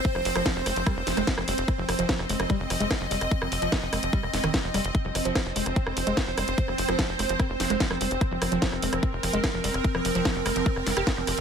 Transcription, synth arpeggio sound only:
X:1
M:4/4
L:1/16
Q:1/4=147
K:Fm
V:1 name="Synth arpeggio sound" clef=bass
z F, F, F, F, F, A, F, G, z F, A, z F, G, z | z F, F, F, F, F, A, F, G, z F, A, F, F, G, z | z F, F, F, F, F, A, F, G, z A, E, z F, G, z | z F, F, F, F, F, A, F, C z F, A, z F, G, z |
z F, F, F, z F, A, F, C z F, A, F, F, G, z | z F, F, F, F, F, A, F, C z F, A, z F, G, z | z F, F, F, F, F, A, F, C z G, G C F, F, z |]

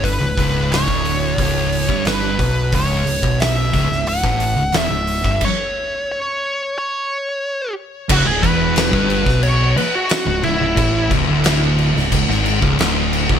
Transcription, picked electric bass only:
X:1
M:4/4
L:1/16
Q:1/4=89
K:C#m
V:1 name="Picked electric bass" clef=bass
=G,,, C,,, C,,,3 =D,,,3 C,,,3 G,,,3 B,,,2 | C,,,2 C,,, B,,,3 C,,, C,,,2 A,,,2 C,,, E,,, C,,,2 =G,,, | z16 | C,,, C,,, E,,,3 =G,,,2 B,,,3 z3 C,,, C,,, C,,, |
A,,,2 C,,, =D,,,4 C,,, C,,, G,,,2 C,,, D,,,3 C,,, |]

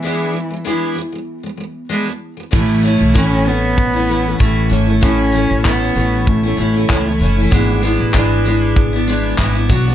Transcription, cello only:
X:1
M:4/4
L:1/16
Q:"Swing 16ths" 1/4=96
K:A
V:1 name="Cello"
E,6 z8 z2 | A,4 C2 B,6 A,4 | C4 B,4 A,4 A,3 z | z16 |]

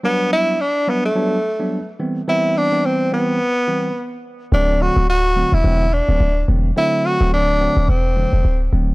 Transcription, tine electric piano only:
X:1
M:4/4
L:1/16
Q:"Swing 16ths" 1/4=107
K:Dmix
V:1 name="Tine electric piano" clef=bass
[F,G,B,D]4 z2 [F,G,B,D] z [F,G,B,D] z2 [F,G,B,D] z2 [E,G,B,C] z | [E,G,B,C]3 [E,G,B,C]3 [E,G,B,C]2 z2 [E,G,B,C] z4 z | [D,F,A,C]4 z2 [D,F,A,C] z [D,F,A,C] z2 [D,F,A,C] z2 [D,F,A,C] z | [D,F,A,C]3 [D,F,A,C]3 [D,F,A,C]2 z2 [D,F,A,C] z3 [D,F,A,C]2 |]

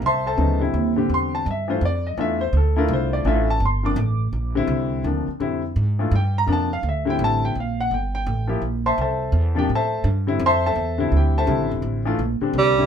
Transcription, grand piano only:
X:1
M:3/4
L:1/8
Q:"Swing" 1/4=168
K:Aphr
V:1 name="Grand piano"
[ceac'] [Acea]2 z3 | c' a [_e=e] c d _e | e c A B c d | e a c' d'3 |
z6 | z4 g b | a f e g a g | f _g =g g2 z |
z [ceac'] [Acea]3 [Gg] | [Acea]2 z2 [ceac'] [Acea]- | [Acea]2 [Gg] [Acea]2 z | z6 |]
V:2 name="Grand piano"
z2 [_D,_G,_C_E] [=D,=G,=C=E]2 [D,G,CG]- | [D,G,CG]2 z [E,A,DF] z2 | [E,A,DF] z2 [A,DEF]3 | [E,A,DF] z2 [C,F,B,D] z2 |
z [D,G,CE]3 [C,F,B,D] z | [D,G,CE] z2 [E,A,DF] z2 | [C,F,B,D] z2 [D,G,CE]3 | z4 z [F,B,EG] |
z4 z [C,F,B,D] | z3 [D,G,CE] z2 | z [D,G,CE]3 [D,G,CE]2- | [D,G,CE] [E,A,DF] z [D,G,CD]2 [D,G,CE] |]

